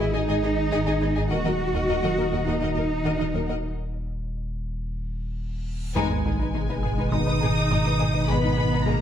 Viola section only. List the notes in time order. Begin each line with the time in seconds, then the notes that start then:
0.13 G#4
0.27 G#4
0.43 G#4
0.72 G#4
0.86 G#4
1.01 G#4
1.16 G#4
1.31 A#4
1.46 A#4
1.75 A#4
1.89 A#4
2.04 A#4
2.19 A#4
2.32 A#4
2.48 A#4
2.63 A#4
2.78 A#4
3.05 A#4
3.20 A#4
3.34 A#4
3.49 A#4
5.96 G#3
7.12 D#4
8.29 B3
8.87 A#3